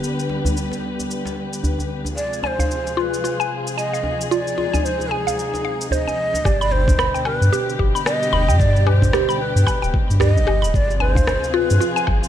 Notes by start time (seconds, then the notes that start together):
Already playing: D3 G3 B3 G4 B4
0.04 shaker
0.19 shaker
0.29 djembe slap
0.45 djembe bass, shaker
0.57 shaker
0.72 djembe slap, shaker
0.99 djembe tone, shaker
1.11 shaker
1.25 djembe slap, shaker
1.53 shaker
1.64 djembe bass, shaker
1.78 djembe tone, shaker
2.05 djembe tone, shaker
2.16 C3 F3 G#3 F4 G#4 D5, shaker
2.33 shaker
2.43 D5 G#5, djembe slap, djembe tone
2.47 C5
2.59 F5, djembe bass, shaker
2.71 shaker
2.87 djembe slap, shaker
2.96 F4 C5
3.00 B4
3.14 shaker
3.24 F4, shaker
3.40 G#5, shaker
3.67 shaker
3.77 D#5 G#5, shaker
3.93 F5, shaker
4.03 djembe tone
4.21 shaker
4.31 D#4 F4 D5, shaker
4.47 shaker
4.58 F4, djembe slap
4.74 G#5, djembe bass, shaker
4.85 C5, shaker
5.00 djembe slap, shaker
5.11 G#4 G#5
5.27 F5, djembe tone, shaker
5.39 shaker
5.54 djembe slap, shaker
5.65 F5
5.81 shaker
5.91 C5 D#5, djembe bass, shaker
6.08 G#5, djembe tone, shaker
6.34 djembe tone, shaker
6.45 G1 B2 D3 G3 G4 D5, kick, low woodblock, shaker
6.61 B5, shaker
6.72 C5, djembe tone
6.88 kick, djembe bass, shaker
6.99 B5, cross-stick, shaker
7.14 G5, djembe tone, shaker
7.25 A#4, low woodblock
7.37 B4
7.41 G2, shaker
7.53 G4, shaker
7.69 shaker
7.79 G1 G4, kick
7.95 B5, shaker
8.06 D#5, cross-stick, low woodblock, shaker
8.23 shaker
8.33 F1 B5, djembe tone
8.48 G2 G5, shaker
8.60 D5, kick, shaker
8.76 shaker
8.87 G4 C5, djembe slap, djembe tone, low woodblock
9.02 kick, djembe bass, shaker
9.13 G4, cross-stick, shaker
9.28 B5, djembe slap, djembe tone, shaker
9.41 B4
9.56 G2, shaker
9.67 B5, kick, low woodblock, shaker
9.82 D1 G5, shaker
9.94 kick
10.10 G2, shaker
10.20 G4 D#5, cross-stick, djembe bass, shaker
10.36 G1, djembe tone, shaker
10.47 G1 G4, low woodblock
10.62 D1 B5, shaker
10.73 G1 C3 F3 C4 F4 G#4 D5, kick, shaker
10.90 shaker
11.00 C5 G#5, djembe tone
11.15 F5, kick, djembe bass, shaker
11.27 cross-stick, low woodblock, shaker
11.43 djembe tone, shaker
11.54 F4 B4
11.70 G2, shaker
11.80 F4, shaker
11.96 G#5, shaker
12.07 G1, kick, low woodblock
12.24 shaker